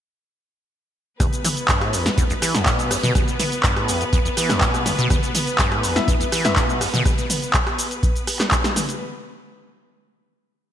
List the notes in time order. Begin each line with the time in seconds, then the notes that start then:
1.20 E2 B3 B4, kick, cross-stick, closed hi-hat, mid tom, shaker
1.33 closed hi-hat, shaker
1.44 E3, closed hi-hat, open hi-hat, mid tom, shaker
1.57 closed hi-hat, shaker
1.68 G2, kick, snare, clap, closed hi-hat, shaker
1.81 A2, cross-stick, closed hi-hat
1.93 E2, closed hi-hat, open hi-hat, shaker
2.06 G2, snare, closed hi-hat, shaker
2.18 E2, kick, closed hi-hat, shaker
2.29 E2, closed hi-hat, shaker
2.42 E3, cross-stick, closed hi-hat, open hi-hat, shaker
2.55 E2, snare, closed hi-hat, shaker
2.66 B2, kick, snare, clap, closed hi-hat, shaker
2.79 closed hi-hat, shaker
2.91 E2, cross-stick, open hi-hat, shaker
3.03 B2, snare, closed hi-hat, mid tom, shaker
3.15 E2, kick, cross-stick, closed hi-hat, mid tom, shaker
3.28 closed hi-hat, shaker
3.39 E3, closed hi-hat, open hi-hat, mid tom, shaker
3.52 closed hi-hat, shaker
3.63 G2, kick, snare, clap, closed hi-hat, shaker
3.76 A2, cross-stick, closed hi-hat
3.88 E2, closed hi-hat, open hi-hat, shaker
4.01 G2, closed hi-hat, shaker
4.13 E2, kick, closed hi-hat, shaker
4.25 E2, closed hi-hat, shaker
4.37 E3, cross-stick, closed hi-hat, open hi-hat, shaker
4.50 E2, cross-stick, snare, closed hi-hat, shaker
4.61 B2, kick, snare, clap, closed hi-hat, shaker
4.74 cross-stick, closed hi-hat, shaker
4.86 E2, snare, closed hi-hat, open hi-hat, mid tom, shaker
4.98 B2, snare, closed hi-hat, shaker
5.10 E2, kick, cross-stick, closed hi-hat, mid tom, shaker
5.23 closed hi-hat, shaker
5.35 E3, closed hi-hat, open hi-hat, mid tom, shaker
5.47 closed hi-hat, shaker
5.58 G2, kick, snare, clap, closed hi-hat, shaker
5.72 A2, cross-stick, closed hi-hat
5.83 E2, closed hi-hat, open hi-hat, shaker
5.96 G2 B3 E4 E5, snare, closed hi-hat, shaker
6.08 E2, kick, closed hi-hat, shaker
6.20 E2, closed hi-hat, shaker
6.32 E3, cross-stick, closed hi-hat, open hi-hat, shaker
6.45 E2 B3 E4 E5, snare, closed hi-hat, shaker
6.56 B2, kick, snare, clap, closed hi-hat, shaker
6.69 closed hi-hat, shaker
6.81 E2, cross-stick, open hi-hat, shaker
6.94 B2, snare, closed hi-hat, mid tom, shaker
7.05 kick, cross-stick, closed hi-hat, mid tom, shaker
7.18 closed hi-hat, shaker
7.30 open hi-hat, mid tom, shaker
7.42 closed hi-hat, shaker
7.54 kick, clap, closed hi-hat, shaker
7.67 cross-stick, closed hi-hat
7.79 open hi-hat, shaker
7.91 closed hi-hat, shaker
8.03 kick, closed hi-hat, shaker
8.16 closed hi-hat, shaker
8.27 cross-stick, open hi-hat, shaker
8.39 cross-stick, snare, clap, shaker
8.51 kick, clap, closed hi-hat, shaker
8.64 cross-stick, snare, closed hi-hat, shaker
8.76 snare, open hi-hat, mid tom, shaker
8.89 closed hi-hat, shaker